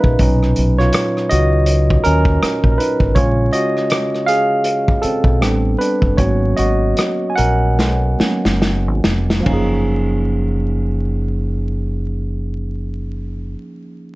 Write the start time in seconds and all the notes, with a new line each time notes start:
Already playing: F3 G#3 A#3 C#4 D#4 G#4 A#4 B4 E5 F5
0.04 A#1, kick
0.19 B1 A#2 F#3 C#4 D#4, kick, closed hi-hat
0.43 cross-stick
0.56 B1, closed hi-hat
0.78 F4 C#5, cross-stick
0.93 cross-stick, closed hi-hat
1.17 cross-stick
1.30 C#2 F#4 D#5, closed hi-hat
1.66 closed hi-hat
1.90 kick
2.04 D#2 C#4 A#4, closed hi-hat
2.25 kick
2.43 muted fingered electric bass stroke, cross-stick, closed hi-hat
2.64 A#1, kick
2.72 A#4
2.78 D#4 B4, closed hi-hat
3.00 G#1, kick
3.15 A#1 C#3 G#3 C#4 F4 C#5, kick, closed hi-hat
3.53 F#4 D#5, closed hi-hat
3.77 cross-stick
3.90 cross-stick, closed hi-hat
4.14 cross-stick
4.26 G#4 F5, closed hi-hat
4.64 closed hi-hat
4.88 kick
5.02 C4 A4, muted fingered electric bass stroke, closed hi-hat
5.24 B1, kick
5.41 A1 G3 B3 C4 D4, cross-stick, closed hi-hat
5.78 D4 B4, closed hi-hat
6.02 F#1, kick
6.17 G#1 F#3 A#3 B3 C#4 F#4 C#5, kick, closed hi-hat
6.57 G#1 F#4 D#5, closed hi-hat
6.97 cross-stick, closed hi-hat
7.30 G#5
7.35 A#1 A#4 F#5, closed hi-hat
7.79 B1, snare
8.19 F#3 A#3 B3 C#4, snare
8.45 F#1, snare
8.62 snare
8.88 G#1
9.04 F1, snare
9.30 snare
9.40 F3 A#3
9.46 F#1 C#4 D#4, kick, floor tom, ride bell
9.53 G#4